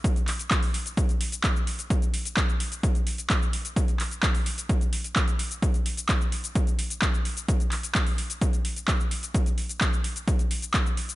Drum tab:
HH |xxoxxooxxxoxx-ox|xxoxx-oxxxoxx-ox|xxoxxooxxxoxxxox|xxoxx-oxxxoxx-ox|
SH |xx-xxx-xxx-xxx-x|xx-xxx-xxx-xxx-x|xx-xxx-xxx-xxx-x|xx-xxx-xxx-xxx-x|
CP |--x-x-------x---|----x-------x---|--x-x-------x---|----x-------x---|
BD |o---o---o---o---|o---o---o---o---|o---o---o---o---|o---o---o---o---|

HH |xxoxxooxxxoxx-ox|xxoxx-oxxxoxx-ox|
SH |xx-xxx-xxx-xxx-x|xx-xxx-xxx-xxx-x|
CP |--x-x-------x---|----x-------x---|
BD |o---o---o---o---|o---o---o---o---|